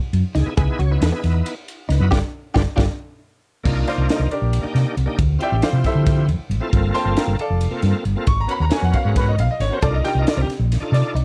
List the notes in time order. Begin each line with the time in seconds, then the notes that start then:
0.03 muted fingered electric bass stroke
0.13 F#2, ride
0.35 C#2 D#4 G#4, snare, ride
0.46 B3 D#4 E4 G#4
0.57 C#2 B3 D#4 E4 G#4 B4, kick, ride
0.79 C#2 F#4 C#5, ride
0.91 B3 D#4 E4 B4
1.01 E2, snare, ride
1.05 G#4
1.12 B3
1.24 E2, snare, ride
1.46 ride
1.68 ride
1.89 C#2 D#4 B4, snare, ride
2.00 F#2 B3 D#4 E4 F#4
2.11 G1 D4 F4 G4 B4 D5, kick, snare
2.54 G1 D4 F4 G4 B4 D5, kick, snare
2.76 G1 D4 F4 G4 B4 D5, kick, snare
3.64 C2 A#3 D4 D#4 F4, kick, crash
3.87 F4 C5 D5 F5, snare, ride
3.98 C2
4.09 D#4 A#4 C5 D#5, snare, ride
4.19 C2
4.31 D4 G4 A#4 D5, ride
4.42 A#1
4.53 ride
4.62 A#3 D4 D#4 G4, muted fingered electric bass stroke
4.75 C3, snare, ride
4.97 C2, ride
5.06 A#3 D4 D#4 G4
5.19 D2, kick, ride
5.39 C4 E4 F4 G4 G5, ride
5.43 G4 D5 E5
5.52 A1
5.62 F3 C4 E4 F4 G4 C5 D5 F5, snare, ride
5.73 C3
5.84 E4 A4 C5 E5, kick, snare, ride
5.95 D3
6.06 kick, snare, ride
6.28 F2, ride
6.39 muted fingered electric bass stroke
6.50 A1, ride
6.60 C4 E4 F4 A4
6.70 G1 A#3 C4 F4 A4, kick, ride
6.94 C5 G5 A5 C6, snare, ride
7.05 G1
7.17 A#4 F5 G5 A#5, snare, ride
7.27 G1
7.39 A4 D5 F5 A5, ride
7.50 F1
7.61 ride
7.71 A#3 C4 F4 A4, muted fingered electric bass stroke
7.82 G2, snare, ride
8.05 G1, ride
8.15 A#3 C4 F4 A4
8.27 G#1 C#6, kick, ride
8.40 A#5
8.47 B3 C#4 F#4 A#4 B5, ride
8.60 D#2 A#5
8.69 B3 C#4 F#4 A#4 G#5, snare, ride
8.82 F2 F#5
8.93 F5, kick, ride
9.05 G#2 G#4
9.16 B4, kick, snare, ride
9.28 D#5
9.38 B1 F5, ride
9.49 D#5, muted fingered electric bass stroke
9.60 G#1 C#5, snare, ride
9.70 B3 C#4 F#4 A#4 C5
9.82 C2 D4 D#4 F4 A4 A#4 D5, kick, ride
9.94 D#5
10.04 G4 G5, snare, ride
10.15 C2 D#5
10.27 D5, snare, ride
10.37 C2 C4 G4
10.48 muted fingered electric bass stroke, snare, ride
10.59 A#1
10.72 snare, ride
10.80 D4 D#4 F4 A4
10.92 C3 D5, snare, ride
11.15 C2 D#4, ride